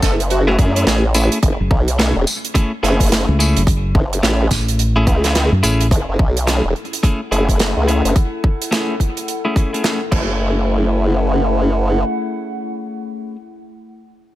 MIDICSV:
0, 0, Header, 1, 7, 480
1, 0, Start_track
1, 0, Key_signature, 3, "minor"
1, 0, Tempo, 560748
1, 1224, Time_signature, 4, 2, 24, 8
1, 12284, End_track
2, 0, Start_track
2, 0, Title_t, "Ambient pad"
2, 0, Program_c, 0, 92
2, 5066, Note_on_c, 0, 64, 76
2, 5386, Note_on_c, 0, 69, 68
2, 5849, Note_on_c, 0, 78, 76
2, 8656, Note_off_c, 0, 64, 0
2, 8661, Note_off_c, 0, 78, 0
2, 8664, Note_off_c, 0, 69, 0
2, 8666, Note_on_c, 0, 64, 69
2, 8757, Note_on_c, 0, 57, 66
2, 9068, Note_on_c, 0, 78, 74
2, 11435, Note_off_c, 0, 64, 0
2, 11474, Note_off_c, 0, 78, 0
2, 11477, Note_off_c, 0, 57, 0
2, 12284, End_track
3, 0, Start_track
3, 0, Title_t, "Digital synth lead"
3, 0, Program_c, 1, 84
3, 24, Note_on_c, 1, 69, 79
3, 118, Note_off_c, 1, 69, 0
3, 268, Note_on_c, 1, 66, 92
3, 360, Note_off_c, 1, 66, 0
3, 410, Note_on_c, 1, 66, 80
3, 470, Note_off_c, 1, 66, 0
3, 12284, End_track
4, 0, Start_track
4, 0, Title_t, "Clean electric guitar"
4, 0, Program_c, 2, 27
4, 405, Note_on_c, 2, 64, 84
4, 408, Note_on_c, 2, 68, 95
4, 412, Note_on_c, 2, 61, 78
4, 416, Note_on_c, 2, 57, 82
4, 488, Note_off_c, 2, 57, 0
4, 488, Note_off_c, 2, 61, 0
4, 488, Note_off_c, 2, 68, 0
4, 489, Note_off_c, 2, 64, 0
4, 500, Note_on_c, 2, 64, 72
4, 502, Note_on_c, 2, 68, 88
4, 505, Note_on_c, 2, 61, 66
4, 509, Note_on_c, 2, 57, 68
4, 627, Note_off_c, 2, 57, 0
4, 627, Note_off_c, 2, 68, 0
4, 628, Note_off_c, 2, 61, 0
4, 628, Note_off_c, 2, 64, 0
4, 644, Note_on_c, 2, 64, 88
4, 649, Note_on_c, 2, 68, 91
4, 655, Note_on_c, 2, 61, 79
4, 659, Note_on_c, 2, 57, 73
4, 729, Note_off_c, 2, 57, 0
4, 729, Note_off_c, 2, 61, 0
4, 729, Note_off_c, 2, 64, 0
4, 729, Note_off_c, 2, 68, 0
4, 739, Note_on_c, 2, 57, 82
4, 743, Note_on_c, 2, 61, 72
4, 747, Note_on_c, 2, 68, 86
4, 751, Note_on_c, 2, 64, 70
4, 881, Note_off_c, 2, 57, 0
4, 881, Note_off_c, 2, 61, 0
4, 881, Note_off_c, 2, 64, 0
4, 881, Note_off_c, 2, 68, 0
4, 981, Note_on_c, 2, 64, 91
4, 985, Note_on_c, 2, 68, 106
4, 988, Note_on_c, 2, 61, 89
4, 990, Note_on_c, 2, 57, 86
4, 1177, Note_off_c, 2, 57, 0
4, 1178, Note_off_c, 2, 61, 0
4, 1178, Note_off_c, 2, 64, 0
4, 1178, Note_off_c, 2, 68, 0
4, 1700, Note_on_c, 2, 57, 89
4, 1703, Note_on_c, 2, 61, 72
4, 1707, Note_on_c, 2, 68, 93
4, 1712, Note_on_c, 2, 64, 72
4, 1840, Note_off_c, 2, 68, 0
4, 1841, Note_off_c, 2, 57, 0
4, 1841, Note_off_c, 2, 61, 0
4, 1841, Note_off_c, 2, 64, 0
4, 2177, Note_on_c, 2, 57, 98
4, 2180, Note_on_c, 2, 61, 92
4, 2185, Note_on_c, 2, 68, 95
4, 2187, Note_on_c, 2, 64, 85
4, 2320, Note_off_c, 2, 57, 0
4, 2320, Note_off_c, 2, 61, 0
4, 2320, Note_off_c, 2, 64, 0
4, 2320, Note_off_c, 2, 68, 0
4, 2421, Note_on_c, 2, 64, 81
4, 2424, Note_on_c, 2, 68, 101
4, 2425, Note_on_c, 2, 61, 74
4, 2428, Note_on_c, 2, 57, 84
4, 2881, Note_off_c, 2, 57, 0
4, 2881, Note_off_c, 2, 61, 0
4, 2881, Note_off_c, 2, 64, 0
4, 2881, Note_off_c, 2, 68, 0
4, 2901, Note_on_c, 2, 64, 79
4, 2904, Note_on_c, 2, 68, 93
4, 2908, Note_on_c, 2, 61, 73
4, 2911, Note_on_c, 2, 57, 83
4, 3097, Note_off_c, 2, 57, 0
4, 3097, Note_off_c, 2, 61, 0
4, 3097, Note_off_c, 2, 68, 0
4, 3098, Note_off_c, 2, 64, 0
4, 3619, Note_on_c, 2, 57, 80
4, 3623, Note_on_c, 2, 61, 80
4, 3627, Note_on_c, 2, 68, 82
4, 3628, Note_on_c, 2, 64, 65
4, 3816, Note_off_c, 2, 57, 0
4, 3816, Note_off_c, 2, 61, 0
4, 3816, Note_off_c, 2, 64, 0
4, 3817, Note_off_c, 2, 68, 0
4, 4244, Note_on_c, 2, 64, 85
4, 4249, Note_on_c, 2, 68, 94
4, 4253, Note_on_c, 2, 61, 71
4, 4255, Note_on_c, 2, 57, 82
4, 4328, Note_off_c, 2, 64, 0
4, 4329, Note_off_c, 2, 57, 0
4, 4329, Note_off_c, 2, 61, 0
4, 4329, Note_off_c, 2, 68, 0
4, 4487, Note_on_c, 2, 64, 89
4, 4488, Note_on_c, 2, 68, 96
4, 4495, Note_on_c, 2, 61, 79
4, 4498, Note_on_c, 2, 57, 81
4, 4569, Note_off_c, 2, 57, 0
4, 4569, Note_off_c, 2, 61, 0
4, 4569, Note_off_c, 2, 68, 0
4, 4570, Note_off_c, 2, 64, 0
4, 4576, Note_on_c, 2, 57, 77
4, 4580, Note_on_c, 2, 61, 67
4, 4586, Note_on_c, 2, 68, 80
4, 4590, Note_on_c, 2, 64, 64
4, 4719, Note_off_c, 2, 61, 0
4, 4719, Note_off_c, 2, 68, 0
4, 4720, Note_off_c, 2, 57, 0
4, 4720, Note_off_c, 2, 64, 0
4, 4818, Note_on_c, 2, 64, 98
4, 4822, Note_on_c, 2, 68, 107
4, 4826, Note_on_c, 2, 61, 79
4, 4830, Note_on_c, 2, 57, 82
4, 5016, Note_off_c, 2, 57, 0
4, 5016, Note_off_c, 2, 61, 0
4, 5016, Note_off_c, 2, 64, 0
4, 5016, Note_off_c, 2, 68, 0
4, 5538, Note_on_c, 2, 57, 78
4, 5542, Note_on_c, 2, 61, 71
4, 5546, Note_on_c, 2, 68, 81
4, 5551, Note_on_c, 2, 64, 64
4, 5680, Note_off_c, 2, 57, 0
4, 5680, Note_off_c, 2, 61, 0
4, 5680, Note_off_c, 2, 68, 0
4, 5681, Note_off_c, 2, 64, 0
4, 6018, Note_on_c, 2, 57, 88
4, 6023, Note_on_c, 2, 61, 77
4, 6027, Note_on_c, 2, 68, 96
4, 6032, Note_on_c, 2, 64, 74
4, 6161, Note_off_c, 2, 57, 0
4, 6161, Note_off_c, 2, 61, 0
4, 6161, Note_off_c, 2, 64, 0
4, 6161, Note_off_c, 2, 68, 0
4, 6260, Note_on_c, 2, 64, 79
4, 6264, Note_on_c, 2, 68, 92
4, 6265, Note_on_c, 2, 61, 65
4, 6269, Note_on_c, 2, 57, 66
4, 6721, Note_off_c, 2, 57, 0
4, 6721, Note_off_c, 2, 61, 0
4, 6721, Note_off_c, 2, 64, 0
4, 6721, Note_off_c, 2, 68, 0
4, 6738, Note_on_c, 2, 64, 75
4, 6742, Note_on_c, 2, 68, 78
4, 6746, Note_on_c, 2, 61, 65
4, 6753, Note_on_c, 2, 57, 75
4, 6936, Note_off_c, 2, 61, 0
4, 6936, Note_off_c, 2, 68, 0
4, 6937, Note_off_c, 2, 57, 0
4, 6937, Note_off_c, 2, 64, 0
4, 7456, Note_on_c, 2, 57, 71
4, 7463, Note_on_c, 2, 61, 64
4, 7467, Note_on_c, 2, 68, 75
4, 7473, Note_on_c, 2, 64, 54
4, 7656, Note_off_c, 2, 57, 0
4, 7656, Note_off_c, 2, 61, 0
4, 7656, Note_off_c, 2, 64, 0
4, 7656, Note_off_c, 2, 68, 0
4, 8087, Note_on_c, 2, 64, 68
4, 8090, Note_on_c, 2, 68, 83
4, 8095, Note_on_c, 2, 61, 65
4, 8098, Note_on_c, 2, 57, 67
4, 8170, Note_off_c, 2, 57, 0
4, 8170, Note_off_c, 2, 61, 0
4, 8170, Note_off_c, 2, 64, 0
4, 8170, Note_off_c, 2, 68, 0
4, 8180, Note_on_c, 2, 64, 58
4, 8186, Note_on_c, 2, 68, 73
4, 8189, Note_on_c, 2, 61, 59
4, 8195, Note_on_c, 2, 57, 61
4, 8309, Note_off_c, 2, 57, 0
4, 8309, Note_off_c, 2, 61, 0
4, 8309, Note_off_c, 2, 64, 0
4, 8309, Note_off_c, 2, 68, 0
4, 8327, Note_on_c, 2, 64, 70
4, 8332, Note_on_c, 2, 68, 80
4, 8336, Note_on_c, 2, 61, 69
4, 8337, Note_on_c, 2, 57, 69
4, 8410, Note_off_c, 2, 57, 0
4, 8410, Note_off_c, 2, 61, 0
4, 8410, Note_off_c, 2, 64, 0
4, 8410, Note_off_c, 2, 68, 0
4, 8417, Note_on_c, 2, 57, 67
4, 8424, Note_on_c, 2, 61, 63
4, 8428, Note_on_c, 2, 68, 70
4, 8434, Note_on_c, 2, 64, 52
4, 8560, Note_off_c, 2, 57, 0
4, 8561, Note_off_c, 2, 61, 0
4, 8561, Note_off_c, 2, 64, 0
4, 8561, Note_off_c, 2, 68, 0
4, 8658, Note_on_c, 2, 64, 73
4, 8664, Note_on_c, 2, 68, 77
4, 8666, Note_on_c, 2, 61, 63
4, 8671, Note_on_c, 2, 57, 67
4, 11431, Note_off_c, 2, 64, 0
4, 11432, Note_off_c, 2, 61, 0
4, 11432, Note_off_c, 2, 68, 0
4, 11433, Note_off_c, 2, 57, 0
4, 12284, End_track
5, 0, Start_track
5, 0, Title_t, "Fingered electric bass"
5, 0, Program_c, 3, 33
5, 1371, Note_on_c, 3, 30, 95
5, 1449, Note_off_c, 3, 30, 0
5, 2811, Note_on_c, 3, 37, 104
5, 3027, Note_off_c, 3, 37, 0
5, 3052, Note_on_c, 3, 30, 101
5, 3370, Note_off_c, 3, 30, 0
5, 3861, Note_on_c, 3, 33, 99
5, 4327, Note_off_c, 3, 33, 0
5, 4727, Note_on_c, 3, 42, 99
5, 4807, Note_off_c, 3, 42, 0
5, 4824, Note_on_c, 3, 33, 95
5, 5049, Note_off_c, 3, 33, 0
5, 12284, End_track
6, 0, Start_track
6, 0, Title_t, "Wobble bass"
6, 0, Program_c, 4, 39
6, 21, Note_on_c, 4, 30, 100
6, 487, Note_off_c, 4, 30, 0
6, 501, Note_on_c, 4, 42, 99
6, 728, Note_off_c, 4, 42, 0
6, 742, Note_on_c, 4, 33, 102
6, 1106, Note_off_c, 4, 33, 0
6, 1223, Note_on_c, 4, 30, 97
6, 1346, Note_off_c, 4, 30, 0
6, 1461, Note_on_c, 4, 35, 97
6, 1826, Note_off_c, 4, 35, 0
6, 1851, Note_on_c, 4, 28, 105
6, 1929, Note_off_c, 4, 28, 0
6, 2423, Note_on_c, 4, 30, 100
6, 2787, Note_off_c, 4, 30, 0
6, 3380, Note_on_c, 4, 30, 101
6, 3607, Note_off_c, 4, 30, 0
6, 3621, Note_on_c, 4, 33, 97
6, 3847, Note_off_c, 4, 33, 0
6, 4339, Note_on_c, 4, 37, 103
6, 4704, Note_off_c, 4, 37, 0
6, 5060, Note_on_c, 4, 30, 93
6, 5185, Note_off_c, 4, 30, 0
6, 5210, Note_on_c, 4, 30, 93
6, 5289, Note_off_c, 4, 30, 0
6, 5301, Note_on_c, 4, 35, 93
6, 5665, Note_off_c, 4, 35, 0
6, 5689, Note_on_c, 4, 28, 94
6, 5768, Note_off_c, 4, 28, 0
6, 6262, Note_on_c, 4, 30, 96
6, 6626, Note_off_c, 4, 30, 0
6, 6648, Note_on_c, 4, 37, 91
6, 6866, Note_off_c, 4, 37, 0
6, 6889, Note_on_c, 4, 30, 97
6, 6968, Note_off_c, 4, 30, 0
6, 8661, Note_on_c, 4, 30, 90
6, 10308, Note_off_c, 4, 30, 0
6, 12284, End_track
7, 0, Start_track
7, 0, Title_t, "Drums"
7, 20, Note_on_c, 9, 54, 63
7, 21, Note_on_c, 9, 36, 59
7, 21, Note_on_c, 9, 42, 50
7, 25, Note_on_c, 9, 40, 50
7, 106, Note_off_c, 9, 42, 0
7, 106, Note_off_c, 9, 54, 0
7, 107, Note_off_c, 9, 36, 0
7, 111, Note_off_c, 9, 40, 0
7, 172, Note_on_c, 9, 42, 65
7, 258, Note_off_c, 9, 42, 0
7, 260, Note_on_c, 9, 42, 73
7, 346, Note_off_c, 9, 42, 0
7, 502, Note_on_c, 9, 36, 104
7, 503, Note_on_c, 9, 42, 54
7, 587, Note_off_c, 9, 36, 0
7, 589, Note_off_c, 9, 42, 0
7, 652, Note_on_c, 9, 42, 66
7, 738, Note_off_c, 9, 42, 0
7, 744, Note_on_c, 9, 38, 117
7, 746, Note_on_c, 9, 42, 72
7, 829, Note_off_c, 9, 38, 0
7, 832, Note_off_c, 9, 42, 0
7, 979, Note_on_c, 9, 54, 72
7, 980, Note_on_c, 9, 42, 71
7, 1065, Note_off_c, 9, 54, 0
7, 1066, Note_off_c, 9, 42, 0
7, 1129, Note_on_c, 9, 42, 69
7, 1214, Note_off_c, 9, 42, 0
7, 1221, Note_on_c, 9, 42, 79
7, 1222, Note_on_c, 9, 36, 121
7, 1307, Note_off_c, 9, 36, 0
7, 1307, Note_off_c, 9, 42, 0
7, 1462, Note_on_c, 9, 36, 104
7, 1547, Note_off_c, 9, 36, 0
7, 1608, Note_on_c, 9, 42, 64
7, 1694, Note_off_c, 9, 42, 0
7, 1705, Note_on_c, 9, 42, 73
7, 1709, Note_on_c, 9, 38, 124
7, 1791, Note_off_c, 9, 42, 0
7, 1795, Note_off_c, 9, 38, 0
7, 1943, Note_on_c, 9, 54, 67
7, 1949, Note_on_c, 9, 42, 51
7, 2029, Note_off_c, 9, 54, 0
7, 2035, Note_off_c, 9, 42, 0
7, 2094, Note_on_c, 9, 42, 65
7, 2180, Note_off_c, 9, 42, 0
7, 2183, Note_on_c, 9, 36, 104
7, 2186, Note_on_c, 9, 42, 84
7, 2268, Note_off_c, 9, 36, 0
7, 2272, Note_off_c, 9, 42, 0
7, 2427, Note_on_c, 9, 40, 42
7, 2433, Note_on_c, 9, 42, 56
7, 2513, Note_off_c, 9, 40, 0
7, 2519, Note_off_c, 9, 42, 0
7, 2569, Note_on_c, 9, 36, 61
7, 2572, Note_on_c, 9, 42, 66
7, 2594, Note_off_c, 9, 42, 0
7, 2594, Note_on_c, 9, 42, 54
7, 2621, Note_off_c, 9, 42, 0
7, 2621, Note_on_c, 9, 42, 43
7, 2645, Note_off_c, 9, 42, 0
7, 2645, Note_on_c, 9, 42, 36
7, 2655, Note_off_c, 9, 36, 0
7, 2668, Note_off_c, 9, 42, 0
7, 2668, Note_on_c, 9, 42, 30
7, 2672, Note_off_c, 9, 42, 0
7, 2672, Note_on_c, 9, 38, 118
7, 2672, Note_on_c, 9, 42, 83
7, 2757, Note_off_c, 9, 42, 0
7, 2758, Note_off_c, 9, 38, 0
7, 2779, Note_on_c, 9, 42, 17
7, 2864, Note_off_c, 9, 42, 0
7, 2911, Note_on_c, 9, 42, 71
7, 2913, Note_on_c, 9, 54, 72
7, 2996, Note_off_c, 9, 42, 0
7, 2998, Note_off_c, 9, 54, 0
7, 3052, Note_on_c, 9, 42, 80
7, 3137, Note_off_c, 9, 42, 0
7, 3141, Note_on_c, 9, 36, 117
7, 3148, Note_on_c, 9, 42, 81
7, 3227, Note_off_c, 9, 36, 0
7, 3233, Note_off_c, 9, 42, 0
7, 3381, Note_on_c, 9, 36, 108
7, 3466, Note_off_c, 9, 36, 0
7, 3534, Note_on_c, 9, 42, 65
7, 3620, Note_off_c, 9, 42, 0
7, 3623, Note_on_c, 9, 38, 103
7, 3630, Note_on_c, 9, 42, 77
7, 3709, Note_off_c, 9, 38, 0
7, 3716, Note_off_c, 9, 42, 0
7, 3858, Note_on_c, 9, 42, 53
7, 3860, Note_on_c, 9, 36, 60
7, 3864, Note_on_c, 9, 40, 51
7, 3864, Note_on_c, 9, 54, 67
7, 3944, Note_off_c, 9, 42, 0
7, 3945, Note_off_c, 9, 36, 0
7, 3950, Note_off_c, 9, 40, 0
7, 3950, Note_off_c, 9, 54, 0
7, 4010, Note_on_c, 9, 42, 67
7, 4095, Note_off_c, 9, 42, 0
7, 4101, Note_on_c, 9, 42, 84
7, 4187, Note_off_c, 9, 42, 0
7, 4339, Note_on_c, 9, 36, 105
7, 4341, Note_on_c, 9, 42, 50
7, 4425, Note_off_c, 9, 36, 0
7, 4427, Note_off_c, 9, 42, 0
7, 4485, Note_on_c, 9, 42, 66
7, 4490, Note_on_c, 9, 38, 37
7, 4571, Note_off_c, 9, 42, 0
7, 4576, Note_off_c, 9, 38, 0
7, 4581, Note_on_c, 9, 42, 85
7, 4584, Note_on_c, 9, 38, 114
7, 4666, Note_off_c, 9, 42, 0
7, 4670, Note_off_c, 9, 38, 0
7, 4823, Note_on_c, 9, 54, 69
7, 4827, Note_on_c, 9, 42, 65
7, 4908, Note_off_c, 9, 54, 0
7, 4913, Note_off_c, 9, 42, 0
7, 4969, Note_on_c, 9, 42, 78
7, 5055, Note_off_c, 9, 42, 0
7, 5061, Note_on_c, 9, 36, 119
7, 5069, Note_on_c, 9, 42, 75
7, 5146, Note_off_c, 9, 36, 0
7, 5155, Note_off_c, 9, 42, 0
7, 5301, Note_on_c, 9, 36, 107
7, 5386, Note_off_c, 9, 36, 0
7, 5450, Note_on_c, 9, 42, 62
7, 5536, Note_off_c, 9, 42, 0
7, 5541, Note_on_c, 9, 38, 116
7, 5547, Note_on_c, 9, 42, 69
7, 5627, Note_off_c, 9, 38, 0
7, 5633, Note_off_c, 9, 42, 0
7, 5785, Note_on_c, 9, 42, 22
7, 5863, Note_off_c, 9, 42, 0
7, 5863, Note_on_c, 9, 42, 29
7, 5934, Note_off_c, 9, 42, 0
7, 5934, Note_on_c, 9, 42, 67
7, 5947, Note_off_c, 9, 42, 0
7, 5947, Note_on_c, 9, 42, 39
7, 6021, Note_on_c, 9, 36, 104
7, 6026, Note_off_c, 9, 42, 0
7, 6026, Note_on_c, 9, 42, 76
7, 6107, Note_off_c, 9, 36, 0
7, 6111, Note_off_c, 9, 42, 0
7, 6268, Note_on_c, 9, 42, 52
7, 6353, Note_off_c, 9, 42, 0
7, 6409, Note_on_c, 9, 36, 57
7, 6415, Note_on_c, 9, 42, 63
7, 6494, Note_off_c, 9, 36, 0
7, 6500, Note_off_c, 9, 42, 0
7, 6501, Note_on_c, 9, 42, 73
7, 6507, Note_on_c, 9, 38, 110
7, 6587, Note_off_c, 9, 42, 0
7, 6592, Note_off_c, 9, 38, 0
7, 6748, Note_on_c, 9, 42, 59
7, 6834, Note_off_c, 9, 42, 0
7, 6893, Note_on_c, 9, 42, 65
7, 6979, Note_off_c, 9, 42, 0
7, 6983, Note_on_c, 9, 36, 115
7, 6983, Note_on_c, 9, 42, 71
7, 7068, Note_off_c, 9, 42, 0
7, 7069, Note_off_c, 9, 36, 0
7, 7223, Note_on_c, 9, 36, 103
7, 7309, Note_off_c, 9, 36, 0
7, 7375, Note_on_c, 9, 42, 70
7, 7460, Note_off_c, 9, 42, 0
7, 7467, Note_on_c, 9, 42, 69
7, 7469, Note_on_c, 9, 38, 117
7, 7552, Note_off_c, 9, 42, 0
7, 7555, Note_off_c, 9, 38, 0
7, 7704, Note_on_c, 9, 36, 56
7, 7709, Note_on_c, 9, 42, 50
7, 7789, Note_off_c, 9, 36, 0
7, 7795, Note_off_c, 9, 42, 0
7, 7850, Note_on_c, 9, 42, 68
7, 7935, Note_off_c, 9, 42, 0
7, 7945, Note_on_c, 9, 42, 70
7, 8031, Note_off_c, 9, 42, 0
7, 8183, Note_on_c, 9, 36, 104
7, 8191, Note_on_c, 9, 42, 49
7, 8269, Note_off_c, 9, 36, 0
7, 8276, Note_off_c, 9, 42, 0
7, 8340, Note_on_c, 9, 42, 60
7, 8422, Note_off_c, 9, 42, 0
7, 8422, Note_on_c, 9, 42, 63
7, 8425, Note_on_c, 9, 38, 103
7, 8508, Note_off_c, 9, 42, 0
7, 8511, Note_off_c, 9, 38, 0
7, 8662, Note_on_c, 9, 36, 104
7, 8663, Note_on_c, 9, 49, 84
7, 8747, Note_off_c, 9, 36, 0
7, 8749, Note_off_c, 9, 49, 0
7, 12284, End_track
0, 0, End_of_file